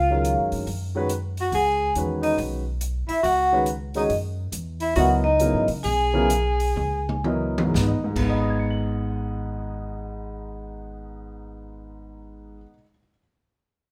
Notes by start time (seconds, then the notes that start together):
Already playing: C#2 F4 F5
0.10 D#3 F#3 G#3 C#4 A#4
0.25 closed hi-hat
0.39 F#2
0.52 G2, open hi-hat
0.67 F#2, open hi-hat
0.95 D#3 G#3 C#4 F#4 B4
1.09 closed hi-hat
1.37 F#4 F#5, open hi-hat
1.52 C#2 G#4 G#5, open hi-hat
1.95 E2 D#3 G#3 C#4 F#4 B4, closed hi-hat
2.22 D#4 D#5, open hi-hat
2.38 B1, open hi-hat
2.81 closed hi-hat
3.08 E4 E5, muted upright bass stroke, open hi-hat
3.23 C#2 F#4 F#5, open hi-hat
3.52 D#3 G#3 C#4 F#4 B4
3.66 closed hi-hat
3.94 D#3 G#3 C#4 D#4 F#4 G#4 D#5, open hi-hat
4.10 F#2, open hi-hat
4.52 E2, closed hi-hat
4.80 E4 E5, open hi-hat
4.96 C#2 F#3 B3 E4 F#4 A#4 D#5 F#5, open hi-hat
5.24 D#4 D#5
5.40 C#3 F#3 B3 E4 A#4, closed hi-hat
5.54 G#2
5.68 C#3, open hi-hat
5.83 B1 G#4 G#5, open hi-hat
6.14 C#3 F#3 B3 E4 A#4
6.30 closed hi-hat
6.60 open hi-hat
6.76 C#2, mid tom
7.09 mid tom
7.24 F#3 B3 E4 A#4 D#5, high tom
7.58 high tom
7.63 G#2
7.69 G#3
7.74 G#1 B3, kick, snare
7.82 D#4
7.88 D#5
8.04 G#2
8.10 G#3
8.16 G#1 B3, kick, crash
8.23 D#4 F#5
8.29 D#5 B5
8.41 D#6
8.50 G#6
8.60 C#7
8.71 F#7